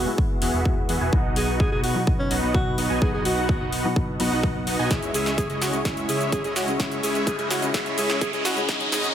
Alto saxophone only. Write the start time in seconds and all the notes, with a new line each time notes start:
Already playing: F#4
1.36 G#4
1.60 G#4
1.72 G#4
1.83 F#4
2.19 C#4
2.55 F#4
3.02 G#4
3.14 G#4
3.26 F#4
5.14 G#4
5.38 G#4
5.50 G#4
5.62 F#4
6.09 G#4
6.32 G#4
6.44 G#4
6.56 F#4
7.03 G#4
7.27 G#4
7.39 G#4
7.50 F#4
7.98 G#4
8.21 G#4
8.33 G#4
8.45 F#4
8.92 G#4